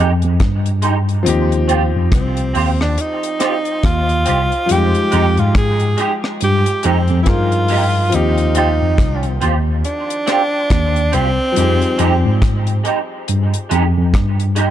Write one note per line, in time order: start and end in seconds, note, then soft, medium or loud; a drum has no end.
0.00 0.21 F2 medium
0.00 1.20 F3 medium
0.00 1.22 D#4 medium
0.00 1.23 G4 medium
0.00 1.21 G#4 medium
0.22 0.40 F2 medium
0.22 closed hi-hat soft
0.40 kick loud
0.40 cross-stick loud
0.40 closed hi-hat medium
0.66 closed hi-hat soft
0.82 0.94 G#3 medium
0.82 0.95 D#4 medium
0.82 0.95 G4 medium
0.82 closed hi-hat medium
1.09 closed hi-hat soft
1.23 4.64 F3 medium
1.23 4.65 C4 medium
1.23 4.66 D#4 medium
1.23 closed hi-hat loud
1.27 1.91 D#2 loud
1.27 4.67 G4 medium
1.52 closed hi-hat soft
1.68 1.80 C4 medium
1.68 1.81 F4 medium
1.68 1.81 G4 medium
1.68 closed hi-hat medium
1.96 2.11 F2 medium
2.12 2.52 C2 medium
2.12 2.77 C4 medium
2.12 kick loud
2.12 cross-stick loud
2.12 closed hi-hat medium
2.37 closed hi-hat soft
2.54 2.96 D#2 medium
2.54 2.66 C4 medium
2.54 2.67 F4 medium
2.54 2.67 G4 medium
2.54 open hi-hat soft
2.81 3.02 D4 medium
2.81 cross-stick medium
2.98 3.85 D#4 medium
2.98 closed hi-hat medium
3.23 closed hi-hat medium
3.39 3.52 C4 medium
3.39 3.52 F4 medium
3.39 3.53 G4 medium
3.39 cross-stick medium
3.39 closed hi-hat medium
3.65 closed hi-hat soft
3.83 4.24 D#2 medium
3.83 4.73 F4 loud
3.83 kick loud
3.83 cross-stick loud
3.83 closed hi-hat medium
4.09 closed hi-hat soft
4.25 4.51 C2 medium
4.25 4.38 C4 medium
4.25 4.38 F4 medium
4.25 4.39 G4 medium
4.25 closed hi-hat medium
4.52 closed hi-hat soft
4.66 7.21 F3 medium
4.66 4.76 G3 soft
4.66 closed hi-hat medium
4.70 4.94 F2 medium
4.70 7.23 D#4 medium
4.70 5.41 G4 loud
4.70 7.24 G5 medium
4.75 7.26 G#3 medium
4.95 closed hi-hat soft
5.11 5.37 F2 medium
5.11 5.24 G#3 medium
5.11 5.24 D#4 loud
5.11 5.24 G4 medium
5.11 closed hi-hat medium
5.37 5.95 G#2 medium
5.37 5.56 F4 medium
5.37 closed hi-hat soft
5.55 6.14 G#4 loud
5.55 kick loud
5.55 cross-stick loud
5.55 closed hi-hat medium
5.80 closed hi-hat soft
5.97 6.09 G#3 medium
5.97 6.10 D#4 medium
5.97 6.10 G4 medium
5.97 closed hi-hat medium
6.24 cross-stick medium
6.41 6.65 G2 medium
6.41 6.87 G4 loud
6.41 closed hi-hat medium
6.66 closed hi-hat medium
6.83 7.08 F2 medium
6.83 6.95 G#3 medium
6.83 7.22 C4 medium
6.83 6.96 D#4 medium
6.83 6.96 G4 medium
6.83 closed hi-hat medium
7.08 7.26 F2 medium
7.08 closed hi-hat soft
7.23 8.08 F3 soft
7.23 7.31 E4 medium
7.23 8.12 G#4 soft
7.23 kick medium
7.23 cross-stick loud
7.23 closed hi-hat medium
7.27 8.09 G2 medium
7.27 8.13 D#4 soft
7.27 8.17 F4 loud
7.27 8.13 A#4 medium
7.52 closed hi-hat soft
7.68 7.81 G#3 medium
7.68 7.82 D#4 medium
7.68 7.82 G4 medium
7.68 open hi-hat medium
8.09 11.52 D#3 medium
8.09 11.50 F3 medium
8.09 11.51 C4 medium
8.09 closed hi-hat loud
8.14 8.78 D#2 medium
8.14 8.57 D#4 medium
8.14 11.53 G4 medium
8.38 closed hi-hat soft
8.55 8.67 C4 medium
8.55 9.39 D#4 medium
8.55 8.67 F4 medium
8.55 8.68 G4 medium
8.55 closed hi-hat medium
8.82 8.98 F2 medium
8.98 9.39 C2 medium
8.98 kick loud
8.98 cross-stick loud
8.98 closed hi-hat medium
9.23 closed hi-hat soft
9.41 9.82 D#2 medium
9.41 9.53 C4 medium
9.41 9.53 F4 medium
9.41 9.54 G4 medium
9.41 closed hi-hat medium
9.85 11.16 D4 medium
9.85 closed hi-hat medium
10.10 closed hi-hat medium
10.26 10.39 C4 medium
10.26 10.39 F4 medium
10.26 10.40 G4 medium
10.26 cross-stick medium
10.26 closed hi-hat medium
10.70 11.11 D#2 medium
10.70 kick medium
10.70 cross-stick loud
10.70 closed hi-hat medium
10.96 closed hi-hat soft
11.12 11.37 C2 medium
11.12 11.24 C4 medium
11.12 12.43 C4 loud
11.12 11.25 F4 medium
11.12 11.25 G4 medium
11.12 closed hi-hat medium
11.52 14.70 F3 medium
11.52 11.63 G3 soft
11.56 11.80 F2 medium
11.56 14.70 D#4 medium
11.56 14.70 G4 medium
11.56 closed hi-hat medium
11.61 14.70 G#4 medium
11.82 closed hi-hat soft
11.98 12.23 F2 medium
11.98 12.10 G#3 loud
11.98 12.11 D#4 medium
11.98 12.11 G4 loud
11.98 closed hi-hat medium
12.25 12.81 G#2 medium
12.42 kick loud
12.42 cross-stick loud
12.42 closed hi-hat medium
12.67 closed hi-hat soft
12.84 12.96 G#3 medium
12.84 12.97 D#4 medium
12.84 12.97 G4 medium
12.84 closed hi-hat medium
13.28 13.52 G2 medium
13.28 closed hi-hat medium
13.54 closed hi-hat medium
13.69 13.95 F2 medium
13.69 13.82 G#3 medium
13.69 13.82 D#4 medium
13.69 13.83 G4 medium
13.69 closed hi-hat medium
13.97 14.13 F2 medium
14.14 14.70 G2 medium
14.14 kick medium
14.14 cross-stick loud
14.14 closed hi-hat medium
14.40 closed hi-hat soft
14.55 14.68 G#3 medium
14.55 14.68 D#4 medium
14.55 14.69 G4 medium
14.55 closed hi-hat medium